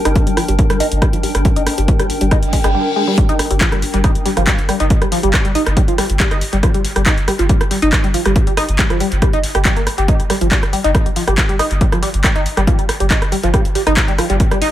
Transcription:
Already playing: D4 A#4 G5
0.05 G1 D#4, cross-stick, closed hi-hat
0.15 kick, closed hi-hat
0.27 G1 G3, closed hi-hat
0.37 F3, cross-stick, open hi-hat
0.48 G1 G3, closed hi-hat
0.59 kick, closed hi-hat
0.70 G1 G3, cross-stick, closed hi-hat
0.80 D#4, open hi-hat
0.92 G1, closed hi-hat
1.02 G3, kick, cross-stick, closed hi-hat
1.13 G1 F3, closed hi-hat
1.23 G3, open hi-hat
1.35 G1, cross-stick, closed hi-hat
1.45 G3, kick, closed hi-hat
1.56 G1 D#4, closed hi-hat
1.67 cross-stick, open hi-hat
1.78 G1 G3, closed hi-hat
1.88 F3, kick, closed hi-hat
2.00 G1 G3, cross-stick, closed hi-hat
2.10 open hi-hat
2.21 G1 G3, closed hi-hat
2.31 D#4, kick, cross-stick, closed hi-hat, reverse cymbal
2.43 G1, closed hi-hat
2.53 G#3, kick, open hi-hat
2.64 G1 G#3, cross-stick, closed hi-hat
2.75 G3
2.96 G#3
3.08 G3
3.18 G3, kick, closed hi-hat
3.29 G1 D#4, closed hi-hat
3.39 cross-stick, open hi-hat
3.51 G1 G3, closed hi-hat
3.61 F3, kick, clap, closed hi-hat
3.72 G1 G3, cross-stick, closed hi-hat
3.82 open hi-hat
3.94 G1 G3, closed hi-hat
4.04 D#4, kick, cross-stick, closed hi-hat
4.15 G1, closed hi-hat
4.26 G3, open hi-hat
4.37 G1 F3, cross-stick, closed hi-hat
4.47 G3, kick, clap, closed hi-hat
4.59 G1, closed hi-hat
4.69 G3, cross-stick, open hi-hat
4.80 G1 D#4, closed hi-hat
4.90 kick, closed hi-hat
5.02 G1 G3, cross-stick, closed hi-hat
5.12 F3, open hi-hat
5.23 G1 G3, closed hi-hat
5.34 kick, cross-stick, clap, closed hi-hat
5.45 G1 G3, closed hi-hat
5.55 D#4, open hi-hat
5.67 G1, cross-stick, closed hi-hat
5.77 G3, kick, closed hi-hat
5.88 G1 F3, closed hi-hat
5.98 G3, cross-stick, open hi-hat
6.10 G1, closed hi-hat
6.20 G3, kick, clap, closed hi-hat
6.31 G1 D#4, cross-stick, closed hi-hat
6.41 open hi-hat
6.53 G1 G3, closed hi-hat
6.63 F3, kick, cross-stick, closed hi-hat
6.74 G1 G3, closed hi-hat
6.85 open hi-hat
6.96 G1 G3, cross-stick, closed hi-hat
7.06 D#4, kick, clap, closed hi-hat
7.18 G1, closed hi-hat
7.28 G3, cross-stick, open hi-hat
7.39 G1 F3, closed hi-hat
7.49 G3, kick, closed hi-hat
7.61 G1, cross-stick, closed hi-hat
7.71 G3, open hi-hat
7.82 G1 D#4, closed hi-hat
7.92 kick, cross-stick, clap, closed hi-hat
8.04 G1 G3, closed hi-hat
8.14 F3, open hi-hat
8.25 G1 G3, cross-stick, closed hi-hat
8.36 kick, closed hi-hat
8.47 G1 G3, closed hi-hat
8.57 D#4, cross-stick, open hi-hat
8.69 G1, closed hi-hat
8.79 G3, kick, clap, closed hi-hat
8.90 G1 F3, cross-stick, closed hi-hat
9.00 G3, open hi-hat
9.12 G1, closed hi-hat
9.22 G3, kick, cross-stick, closed hi-hat
9.33 G1 D#4, closed hi-hat
9.44 open hi-hat
9.55 G1 G4, cross-stick, closed hi-hat
9.65 G3, kick, clap, closed hi-hat
9.76 G1 A#3, closed hi-hat
9.87 cross-stick, open hi-hat
9.98 G1 G4, closed hi-hat
10.08 D#4, kick, closed hi-hat
10.20 G1, closed hi-hat
10.30 G3, cross-stick, open hi-hat
10.41 G1 F3, closed hi-hat
10.51 G3, kick, clap, closed hi-hat
10.63 G1, cross-stick, closed hi-hat
10.73 G3, open hi-hat
10.84 G1 D#4, closed hi-hat
10.95 kick, cross-stick, closed hi-hat
11.06 G1 G3, closed hi-hat
11.16 F3, open hi-hat
11.28 G1 G3, cross-stick, closed hi-hat
11.38 kick, clap, closed hi-hat
11.49 G1 G3, closed hi-hat
11.59 D#4, cross-stick, open hi-hat
11.71 G1, closed hi-hat
11.81 G3, kick, closed hi-hat
11.92 G1 F3, cross-stick, closed hi-hat
12.03 G3, open hi-hat
12.14 G1, closed hi-hat
12.24 G3, kick, cross-stick, clap, closed hi-hat
12.36 G1 D#4, closed hi-hat
12.46 open hi-hat
12.57 G1 G3, cross-stick, closed hi-hat
12.67 F3, kick, closed hi-hat
12.79 G1 G3, closed hi-hat
12.89 cross-stick, open hi-hat
13.00 G1 G3, closed hi-hat
13.11 D#4, kick, clap, closed hi-hat
13.22 G1, cross-stick, closed hi-hat
13.32 G3, open hi-hat
13.43 G1 F3, closed hi-hat
13.54 G3, kick, cross-stick, closed hi-hat
13.65 G1, closed hi-hat
13.75 G3, open hi-hat
13.87 G1 D#4, cross-stick, closed hi-hat
13.97 kick, clap, closed hi-hat
14.08 G1 G3, closed hi-hat
14.18 F3, cross-stick, open hi-hat
14.30 G1 G3, closed hi-hat
14.40 kick, closed hi-hat
14.51 G1 G3, cross-stick, closed hi-hat
14.62 D#4, open hi-hat

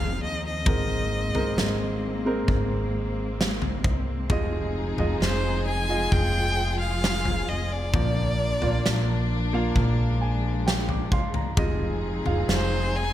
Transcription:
Already playing: F1 F3 C4 D#4 G#4 A#4 F5
0.20 D#2 D#5
0.47 D#5
0.65 G#1 G#2 D#3 G#3 A#3 C4 A#4, kick, floor tom
1.35 G#1 G#3 C4 A#4, floor tom
1.56 G#1, snare
2.25 G#3 C4 A#4
2.48 G#1, kick, floor tom
3.41 snare
3.62 floor tom
3.84 C2, kick
4.29 F1 C3 F3 G#3 D#4 F4 G#4 D#5, kick, floor tom
4.98 F1 G#3 F4 D#5, floor tom
5.20 F1 C5, snare
5.68 G#5
5.88 G#3 F4 D#5
6.11 F1 F4 G5, kick, floor tom
6.80 F5
7.04 snare
7.25 floor tom
7.48 F1 D#5
7.72 D5
7.94 A#1 A#2 F3 A#3 D4 F4 D5, kick, floor tom
8.62 A#1 A#3 F4 D5, floor tom
8.85 A#1, snare
9.53 A#3 F4 F5
9.76 A#1 G#3, kick, floor tom
10.21 G#5
10.67 G5, snare
10.89 D6, floor tom
11.12 C2 F5 C6, kick
11.34 A#5, floor tom
11.57 F1 C3 G#3 C4 D#4 F4 G#4 D#5, kick, floor tom
12.25 F1 G#3 F4 F5, floor tom
12.49 F1 C5, snare
12.96 G#5

